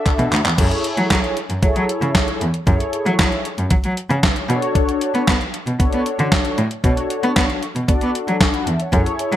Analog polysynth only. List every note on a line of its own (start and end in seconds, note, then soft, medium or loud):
0.00 0.40 D4 medium
0.00 0.40 F#4 medium
0.00 0.41 A4 medium
0.00 0.41 E5 medium
0.58 1.39 E4 medium
0.58 1.39 G#4 medium
0.58 1.39 A4 medium
0.58 1.39 C#5 loud
1.62 2.43 E4 medium
1.62 2.43 G#4 medium
1.62 2.43 A4 medium
1.62 2.43 C#5 loud
2.66 3.47 E4 medium
2.66 3.47 G#4 medium
2.66 3.48 A4 medium
2.66 3.48 C#5 loud
4.10 4.23 C#5 medium
4.10 4.23 F#5 medium
4.23 4.36 B4 medium
4.23 4.36 E5 medium
4.37 4.61 G#4 medium
4.37 4.48 C#5 medium
4.49 5.33 D4 loud
4.49 5.33 F#4 loud
4.49 5.33 A4 medium
4.49 5.33 C#5 loud
5.79 6.60 D4 medium
5.79 6.60 F#4 medium
5.79 6.60 A4 medium
5.79 6.60 C#5 medium
6.83 7.65 D4 medium
6.83 7.65 F#4 medium
6.83 7.65 A4 medium
6.83 7.65 C#5 medium
7.88 8.69 D4 medium
7.88 8.69 F#4 medium
7.88 8.69 A4 medium
7.88 8.15 D5 loud
8.41 8.53 G#5 medium
8.41 8.53 C#6 medium
8.54 8.67 F#5 medium
8.54 8.66 B5 medium
8.67 8.80 E5 medium
8.67 8.79 A5 medium
8.81 8.93 C#5 medium
8.81 9.05 F#5 medium
8.93 9.36 E4 medium
8.93 9.36 G#4 medium
8.93 9.36 A4 medium
8.93 9.36 C#5 loud